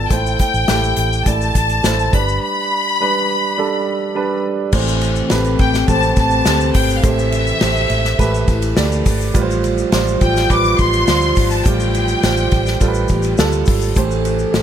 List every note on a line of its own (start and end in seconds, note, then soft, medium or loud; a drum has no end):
0.00 0.13 B3 medium
0.00 0.13 F4 medium
0.00 0.14 A4 medium
0.00 0.13 D5 medium
0.00 0.12 A5 loud
0.10 0.35 A1 medium
0.10 0.61 A3 medium
0.10 0.61 E4 medium
0.10 0.61 C5 medium
0.10 1.27 G5 loud
0.10 kick loud
0.10 closed hi-hat medium
0.10 shaker medium
0.26 shaker medium
0.39 kick medium
0.39 closed hi-hat medium
0.39 shaker soft
0.54 0.66 A1 medium
0.54 shaker soft
0.67 0.92 A1 medium
0.67 1.18 A3 medium
0.67 1.19 E4 medium
0.67 1.19 G4 medium
0.67 snare loud
0.67 closed hi-hat medium
0.67 shaker medium
0.84 shaker soft
0.96 1.21 A1 medium
0.96 closed hi-hat medium
0.96 shaker soft
1.13 shaker soft
1.26 1.50 A1 medium
1.26 1.76 A3 medium
1.26 1.77 E4 medium
1.26 1.77 D5 medium
1.26 2.14 A5 loud
1.26 kick medium
1.26 closed hi-hat medium
1.26 shaker medium
1.41 shaker medium
1.55 1.79 A1 medium
1.55 kick medium
1.55 closed hi-hat medium
1.55 shaker soft
1.69 closed hi-hat soft
1.69 shaker soft
1.83 2.08 A1 medium
1.83 2.13 A3 medium
1.83 2.13 E4 medium
1.83 2.13 C5 medium
1.83 snare medium
1.83 closed hi-hat medium
1.83 shaker medium
1.99 shaker soft
2.13 2.37 G1 medium
2.13 2.88 G3 medium
2.13 2.89 D4 medium
2.13 2.89 B4 medium
2.13 2.41 B5 medium
2.13 kick medium
2.13 closed hi-hat medium
2.28 shaker medium
2.42 4.40 B5 loud
3.00 3.50 G3 medium
3.00 3.51 D4 medium
3.00 3.51 B4 medium
3.58 4.08 G3 medium
3.58 4.08 D4 medium
3.58 4.08 A4 medium
4.15 4.65 G3 medium
4.15 4.65 D4 medium
4.15 4.66 B4 medium
4.73 5.20 A1 medium
4.73 5.56 A2 medium
4.73 8.16 C3 medium
4.73 5.56 E3 medium
4.73 5.23 A3 medium
4.73 8.16 C4 medium
4.73 5.23 G4 medium
4.73 5.23 C5 medium
4.73 kick loud
4.73 crash loud
4.73 shaker medium
4.88 shaker medium
5.01 ride medium
5.01 shaker medium
5.16 shaker soft
5.30 5.55 A1 medium
5.30 5.80 A3 medium
5.30 5.81 G4 medium
5.30 5.81 B4 loud
5.30 snare loud
5.30 ride medium
5.30 shaker medium
5.44 ride soft
5.44 shaker soft
5.59 5.83 A1 medium
5.59 5.87 G5 medium
5.59 kick medium
5.59 ride medium
5.59 shaker soft
5.74 snare soft
5.74 shaker medium
5.88 6.12 A1 medium
5.88 6.38 A3 medium
5.88 6.39 G4 medium
5.88 6.39 C5 medium
5.88 6.16 A5 loud
5.88 kick medium
5.88 ride medium
5.88 shaker medium
6.02 shaker medium
6.16 6.41 A1 medium
6.16 6.71 A5 loud
6.16 kick medium
6.16 ride medium
6.16 shaker soft
6.30 shaker soft
6.46 6.70 D2 medium
6.46 6.96 A3 medium
6.46 6.97 G4 medium
6.46 6.97 C5 medium
6.46 snare loud
6.46 ride medium
6.46 shaker medium
6.61 shaker medium
6.74 6.99 G#1 medium
6.74 6.95 G5 medium
6.74 kick medium
6.74 open hi-hat medium
6.74 ride medium
6.74 shaker soft
6.90 shaker medium
6.97 7.04 F5 medium
7.03 7.51 A1 loud
7.03 7.87 A2 medium
7.03 7.87 E3 medium
7.03 7.54 A3 medium
7.03 7.54 G4 medium
7.03 7.54 C5 medium
7.03 8.77 E5 loud
7.03 kick loud
7.03 hi-hat pedal medium
7.03 ride medium
7.03 shaker medium
7.19 shaker medium
7.32 ride medium
7.32 shaker medium
7.47 shaker medium
7.61 7.85 A1 loud
7.61 8.12 A3 medium
7.61 8.12 G4 medium
7.61 8.12 C5 medium
7.61 snare loud
7.61 ride medium
7.61 shaker medium
7.76 shaker soft
7.90 8.14 A1 loud
7.90 ride medium
7.90 shaker soft
8.05 snare soft
8.05 shaker medium
8.19 8.43 A1 medium
8.19 8.69 A3 medium
8.19 8.69 G4 medium
8.19 8.70 B4 medium
8.19 kick medium
8.19 ride medium
8.19 shaker medium
8.34 shaker medium
8.48 8.72 A1 medium
8.48 9.05 E3 medium
8.48 9.05 E4 medium
8.48 kick medium
8.48 ride medium
8.48 shaker medium
8.62 ride medium
8.62 shaker soft
8.76 9.01 D2 loud
8.76 9.27 A3 medium
8.76 9.27 G4 medium
8.76 9.27 D5 medium
8.76 snare loud
8.76 ride medium
8.76 shaker medium
8.92 shaker medium
9.06 9.30 G#1 medium
9.06 kick medium
9.06 open hi-hat medium
9.06 ride medium
9.06 shaker medium
9.21 shaker soft
9.34 9.82 A1 medium
9.34 10.17 A2 medium
9.34 12.77 F3 medium
9.34 9.85 G3 medium
9.34 12.77 F4 loud
9.34 9.85 F4 medium
9.34 9.41 B4 medium
9.34 kick loud
9.34 hi-hat pedal medium
9.34 ride medium
9.34 shaker medium
9.42 9.88 C5 loud
9.51 shaker medium
9.64 ride medium
9.64 shaker medium
9.78 shaker medium
9.92 10.16 A1 loud
9.92 10.42 G3 medium
9.92 10.42 F4 medium
9.92 10.43 C5 loud
9.92 snare loud
9.92 ride medium
9.92 shaker medium
10.07 ride soft
10.07 shaker soft
10.21 10.45 A1 loud
10.21 10.49 G5 loud
10.21 kick medium
10.21 ride medium
10.21 shaker soft
10.36 snare soft
10.36 shaker soft
10.49 10.74 A1 medium
10.49 11.00 G3 medium
10.49 11.00 F4 medium
10.49 11.00 B4 medium
10.49 10.79 D6 loud
10.49 kick medium
10.49 ride medium
10.49 shaker medium
10.65 shaker soft
10.78 11.03 A1 medium
10.78 11.48 C6 loud
10.78 kick medium
10.78 ride medium
10.78 shaker medium
10.93 ride soft
10.93 shaker soft
11.07 11.32 D2 medium
11.07 11.58 G3 medium
11.07 11.58 F4 medium
11.07 11.58 C5 medium
11.07 snare loud
11.07 ride medium
11.07 shaker medium
11.22 shaker medium
11.35 11.61 G#1 medium
11.35 kick medium
11.35 open hi-hat medium
11.35 ride medium
11.35 shaker medium
11.51 11.66 A5 medium
11.51 shaker medium
11.65 12.13 A1 loud
11.65 12.49 A2 medium
11.65 12.16 G3 medium
11.65 12.16 F4 medium
11.65 12.16 G4 medium
11.65 13.39 G5 medium
11.65 kick loud
11.65 hi-hat pedal medium
11.65 ride medium
11.65 shaker medium
11.80 shaker medium
11.95 ride medium
11.95 shaker medium
12.08 shaker medium
12.23 12.47 A1 loud
12.23 12.73 G3 medium
12.23 12.74 F4 medium
12.23 12.74 C5 medium
12.23 snare medium
12.23 ride medium
12.23 shaker medium
12.37 ride soft
12.37 shaker soft
12.51 12.76 A1 medium
12.51 kick medium
12.51 ride medium
12.51 shaker soft
12.66 snare soft
12.66 shaker medium
12.80 13.05 A1 loud
12.80 13.31 G3 medium
12.80 13.31 F4 medium
12.80 12.88 A4 medium
12.80 kick medium
12.80 ride medium
12.80 shaker medium
12.88 13.34 B4 medium
12.94 shaker medium
13.08 13.34 A1 loud
13.08 13.67 G3 medium
13.08 13.67 G4 medium
13.08 kick medium
13.08 ride medium
13.08 shaker soft
13.22 ride soft
13.22 shaker soft
13.38 13.62 D2 medium
13.38 13.89 G3 medium
13.38 13.89 F4 medium
13.38 13.89 A4 loud
13.38 snare medium
13.38 ride medium
13.38 shaker medium
13.52 shaker medium
13.66 13.91 G#1 medium
13.66 kick medium
13.66 open hi-hat medium
13.66 ride medium
13.66 shaker medium
13.81 shaker soft
13.95 14.44 A1 loud
13.95 14.62 A2 medium
13.95 14.62 E3 medium
13.95 14.46 A3 medium
13.95 14.62 A3 medium
13.95 14.47 G4 medium
13.95 14.62 A4 medium
13.95 14.47 C5 loud
13.95 kick loud
13.95 hi-hat pedal medium
13.95 ride medium
13.95 shaker medium
14.11 shaker medium
14.25 ride medium
14.25 shaker soft
14.39 shaker soft
14.53 14.62 A1 medium
14.53 14.62 A3 medium
14.53 14.62 G4 medium
14.53 14.62 C5 medium
14.53 snare loud
14.53 ride medium
14.53 shaker medium